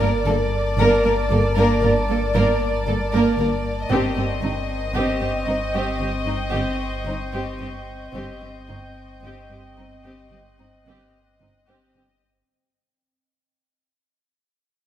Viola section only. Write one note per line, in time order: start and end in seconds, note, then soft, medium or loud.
0.02 0.10 A#3 soft
0.29 0.37 A#3 soft
0.81 1.04 A#3 medium
1.06 1.14 A#3 soft
1.32 1.40 A#3 soft
1.58 1.82 A#3 medium
1.83 1.91 A#3 soft
2.10 2.18 A#3 soft
2.36 2.60 A#3 medium
2.88 2.96 A#3 soft
3.14 3.37 A#3 medium
3.40 3.48 A#3 soft
3.91 4.15 C4 medium
4.18 4.26 C4 soft
4.43 4.51 C4 soft
4.95 5.19 C4 soft
5.22 5.30 C4 soft
5.48 5.56 C4 soft
5.75 5.99 C4 soft
6.00 6.08 C4 soft
6.27 6.35 C4 soft
6.53 6.77 C4 soft
7.06 7.14 C4 soft
7.33 7.58 C4 soft
7.60 7.68 C4 soft
8.15 8.39 C4 soft
8.42 8.50 C4 soft
8.68 8.76 C4 soft
9.23 9.48 C4 soft
9.51 9.59 C4 soft
9.78 9.86 C4 soft
10.05 10.30 C4 soft
10.32 10.40 C4 soft
10.59 10.67 C4 soft
10.86 11.11 C4 soft
11.41 11.49 C4 soft
11.70 11.94 C4 soft
11.97 12.05 C4 soft